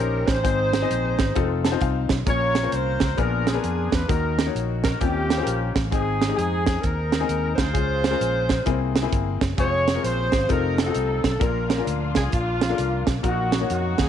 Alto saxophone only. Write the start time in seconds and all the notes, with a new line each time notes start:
Already playing: A#4
0.27 C5
2.30 C#5
2.76 C5
3.20 A#4
3.48 G#4
3.94 B4
4.09 A#4
4.84 A#4
5.02 G4
5.93 G#4
6.36 G#4
6.66 G#4
6.81 A#4
7.55 C5
9.60 C#5
10.04 C5
10.50 A#4
10.79 A4
11.26 A4
11.42 A#4
12.16 G#4
12.34 F4
13.25 F#4
13.71 F#4
14.01 G#4